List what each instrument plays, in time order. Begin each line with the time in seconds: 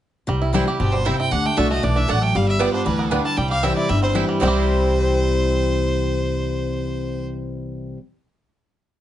0.27 upright bass C2, steel-string acoustic guitar C3, five-string banjo G3
0.42 five-string banjo E4
0.53 steel-string acoustic guitar E3 G3 C4 E4, five-string banjo G3, mandolin C4 E4 C5 G5
0.65 steel-string acoustic guitar C4 E4, five-string banjo G4
0.80 upright bass G1, steel-string acoustic guitar B2, five-string banjo C4, fiddle G4
0.92 five-string banjo G3, fiddle C5
1.05 steel-string acoustic guitar C3, mandolin C4 E4 C5 G5, five-string banjo C4, fiddle E5
1.18 five-string banjo E4, fiddle G5
1.32 upright bass D2, steel-string acoustic guitar D3, five-string banjo D4, fiddle F#5
1.46 five-string banjo A3, fiddle G5
1.56 upright bass C2, steel-string acoustic guitar D3 A3 D4 F#4, mandolin A3 F#4 D5 A5, five-string banjo D4, fiddle E5
1.71 five-string banjo A3, fiddle D#5
1.83 upright bass B1, steel-string acoustic guitar E3, five-string banjo D4, fiddle D5
1.96 five-string banjo D4, fiddle E5
2.08 upright bass A1, steel-string acoustic guitar F#3, mandolin A3 F#4 D5 A5, five-string banjo D4, fiddle F#5
2.22 five-string banjo A3, fiddle G5
2.35 upright bass G1, steel-string acoustic guitar G3, five-string banjo G3, fiddle F5
2.48 fiddle E5
2.59 steel-string acoustic guitar G3 B3 F4, mandolin B3 F4 B4 G5, five-string banjo B3, fiddle D5
2.73 five-string banjo D4, fiddle C5
2.86 upright bass D2, steel-string acoustic guitar E3, five-string banjo G3, fiddle B4
2.99 five-string banjo B3
3.11 steel-string acoustic guitar D3, mandolin B3 F4 B4 G5, five-string banjo D4
3.25 five-string banjo G3, fiddle A5
3.37 upright bass C2, steel-string acoustic guitar C3, five-string banjo G3, fiddle G5
3.50 five-string banjo G4, fiddle F5
3.63 steel-string acoustic guitar E3 G3 C4 E4, mandolin C4 E4 C5 G5, five-string banjo C4, fiddle E5
3.76 five-string banjo E4, fiddle D5
3.89 upright bass G1, steel-string acoustic guitar G2, five-string banjo G3, fiddle E5
4.03 five-string banjo C4, fiddle C5
4.13 steel-string acoustic guitar E3 G3 C4 E4, mandolin C4 E4 C5 G5, five-string banjo E4
4.29 five-string banjo G3
4.40 upright bass C2, steel-string acoustic guitar C3 E3 G3 C4 E4, five-string banjo G3 C4, mandolin C4 E4 C5 G5, fiddle C5
4.45 five-string banjo E4 G4